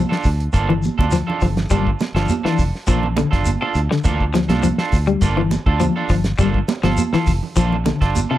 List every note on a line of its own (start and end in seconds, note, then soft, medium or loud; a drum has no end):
0.00 0.16 F3 medium
0.09 0.27 D4 soft
0.09 0.27 F4 soft
0.09 0.27 A4 medium
0.09 snare medium
0.09 high conga soft
0.23 0.47 D2 medium
0.23 kick medium
0.23 open hi-hat medium
0.23 shekere soft
0.40 closed hi-hat medium
0.53 0.88 G1 medium
0.53 0.71 A#3 medium
0.53 0.71 D4 medium
0.53 0.72 F4 medium
0.53 0.72 A4 medium
0.53 kick medium
0.53 closed hi-hat medium
0.53 high conga soft
0.53 shekere medium
0.69 0.90 E3 medium
0.69 low conga medium
0.83 closed hi-hat soft
0.83 high conga medium
0.83 shekere soft
0.98 1.21 D2 medium
0.98 1.16 D4 soft
0.98 1.15 F4 soft
0.98 1.15 A4 medium
0.98 kick medium
0.98 high conga loud
1.11 1.33 F3 medium
1.11 snare soft
1.11 closed hi-hat medium
1.11 shekere medium
1.27 1.45 D4 soft
1.27 1.45 F4 soft
1.27 1.44 A4 medium
1.27 low conga medium
1.41 1.65 G1 medium
1.41 1.63 F3 medium
1.41 kick medium
1.41 open hi-hat soft
1.41 low conga medium
1.41 shekere soft
1.57 snare medium
1.57 closed hi-hat soft
1.57 low conga medium
1.70 1.94 G1 medium
1.70 1.92 G3 medium
1.70 1.89 A#3 medium
1.70 1.89 D4 medium
1.70 1.89 F4 medium
1.70 1.89 A4 medium
1.70 kick medium
1.70 closed hi-hat medium
1.70 high conga soft
1.70 low conga medium
1.70 shekere medium
1.87 kick medium
1.99 snare medium
1.99 closed hi-hat soft
1.99 high conga medium
1.99 shekere soft
2.14 2.26 G1 medium
2.14 2.36 F3 medium
2.14 2.33 D4 soft
2.14 2.33 F4 medium
2.14 2.32 A4 medium
2.14 snare medium
2.14 closed hi-hat soft
2.29 closed hi-hat medium
2.29 high conga medium
2.29 shekere medium
2.44 2.65 E3 medium
2.44 2.62 D4 soft
2.44 2.62 F4 soft
2.44 2.61 A4 soft
2.44 muted fingered electric bass stroke soft
2.44 snare medium
2.44 high conga soft
2.58 2.71 F1 medium
2.58 kick medium
2.58 open hi-hat medium
2.58 shekere soft
2.75 snare soft
2.87 3.23 A#1 medium
2.87 3.09 F3 medium
2.87 3.06 A#3 medium
2.87 3.06 D4 medium
2.87 3.06 F4 medium
2.87 3.06 A4 medium
2.87 kick medium
2.87 closed hi-hat medium
2.87 high conga soft
2.87 shekere medium
3.03 low conga medium
3.17 3.38 D3 medium
3.17 closed hi-hat medium
3.17 high conga loud
3.17 shekere soft
3.31 3.56 G1 medium
3.31 3.49 D4 soft
3.31 3.49 F4 soft
3.31 3.49 A4 soft
3.31 kick medium
3.31 snare soft
3.31 closed hi-hat medium
3.45 closed hi-hat medium
3.45 high conga medium
3.45 shekere medium
3.61 3.79 D4 soft
3.61 3.79 F4 medium
3.61 3.79 A4 medium
3.61 muted clean electric guitar stroke medium
3.74 3.87 D2 medium
3.74 closed hi-hat soft
3.74 shekere soft
3.91 4.12 D3 medium
3.91 snare medium
4.04 4.50 D2 medium
4.04 4.23 A#3 medium
4.04 4.23 D4 medium
4.04 4.23 F4 medium
4.04 4.23 A4 medium
4.04 kick medium
4.04 closed hi-hat medium
4.04 high conga soft
4.04 low conga medium
4.04 shekere medium
4.20 kick medium
4.34 4.55 F3 medium
4.34 snare medium
4.34 closed hi-hat medium
4.34 high conga medium
4.34 shekere soft
4.49 4.72 C2 medium
4.49 4.67 D4 soft
4.49 4.67 F4 medium
4.49 4.66 A4 medium
4.49 snare medium
4.49 closed hi-hat medium
4.49 high conga medium
4.63 4.84 F3 medium
4.63 closed hi-hat medium
4.63 high conga medium
4.63 shekere medium
4.78 4.97 D4 soft
4.78 4.96 F4 soft
4.78 4.96 A4 medium
4.78 snare medium
4.92 5.16 D2 medium
4.92 kick medium
4.92 open hi-hat medium
4.92 shekere soft
5.07 5.28 G3 medium
5.07 closed hi-hat soft
5.21 5.57 G1 medium
5.21 5.40 A#3 medium
5.21 5.40 D4 medium
5.21 5.41 F4 medium
5.21 5.41 A4 medium
5.21 kick medium
5.21 closed hi-hat medium
5.21 high conga soft
5.21 shekere medium
5.37 5.58 E3 medium
5.37 low conga medium
5.51 snare soft
5.51 closed hi-hat medium
5.51 high conga medium
5.51 shekere soft
5.66 5.89 D2 medium
5.66 5.84 D4 soft
5.66 5.84 F4 medium
5.66 5.84 A4 medium
5.66 kick medium
5.80 6.01 F3 medium
5.80 closed hi-hat medium
5.80 high conga medium
5.80 shekere medium
5.96 6.14 D4 soft
5.96 6.14 F4 medium
5.96 6.13 A4 medium
6.09 6.33 G1 medium
6.09 6.31 F3 medium
6.09 kick medium
6.09 open hi-hat medium
6.09 shekere soft
6.24 snare medium
6.24 closed hi-hat medium
6.38 6.62 G1 medium
6.38 6.60 G3 medium
6.38 6.58 A#3 medium
6.38 6.58 D4 medium
6.38 6.58 F4 medium
6.38 6.58 A4 medium
6.38 kick medium
6.38 closed hi-hat medium
6.38 high conga soft
6.38 low conga medium
6.38 shekere medium
6.54 kick medium
6.68 snare medium
6.68 closed hi-hat soft
6.68 high conga loud
6.68 shekere soft
6.83 6.95 G1 medium
6.83 7.04 F3 medium
6.83 7.02 F4 medium
6.83 7.01 A4 medium
6.83 snare medium
6.83 closed hi-hat medium
6.83 high conga medium
6.97 closed hi-hat medium
6.97 high conga medium
6.97 shekere medium
7.13 7.34 E3 medium
7.13 7.31 F4 soft
7.13 7.31 A4 soft
7.13 muted fingered electric bass stroke soft
7.13 muted clean electric guitar stroke soft
7.13 snare medium
7.27 7.39 F1 medium
7.27 kick medium
7.27 open hi-hat medium
7.27 shekere soft
7.43 low conga medium
7.56 7.91 A#1 medium
7.56 7.77 F3 medium
7.56 7.75 A#3 medium
7.56 7.75 D4 medium
7.56 7.75 F4 medium
7.56 7.75 A4 medium
7.56 kick medium
7.56 closed hi-hat medium
7.56 high conga soft
7.56 shekere medium
7.73 low conga medium
7.86 8.07 D3 medium
7.86 snare soft
7.86 closed hi-hat soft
7.86 high conga loud
7.86 shekere soft
8.01 8.24 G1 medium
8.01 8.19 D4 medium
8.01 8.19 F4 soft
8.01 8.18 A4 medium
8.01 kick medium
8.01 snare soft
8.01 closed hi-hat medium
8.16 closed hi-hat medium
8.16 high conga medium
8.16 shekere medium
8.30 8.38 C3 medium
8.30 8.38 D4 medium
8.30 8.38 F4 medium
8.30 8.38 A4 medium